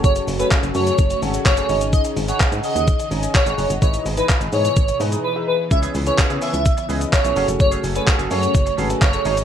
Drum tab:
HH |-xox-xox-xox-xox|-xox-xox-xox-xox|-xox-xox-xox----|-xox-xox-xox-xox|
SH |xxxxxxxxxxxxxxxx|xxxxxxxxxxxxxxxx|xxxxxxxxxxxx----|xxxxxxxxxxxxxxxx|
CP |----x-------x---|----x-------x---|----x-----------|----x-------x---|
BD |o---o---o---o---|o---o---o---o---|o---o---o-------|o---o---o---o---|

HH |-xox-xox-xox-xox|
SH |xxxxxxxxxxxxxxxx|
CP |----x-------x---|
BD |o---o---o---o---|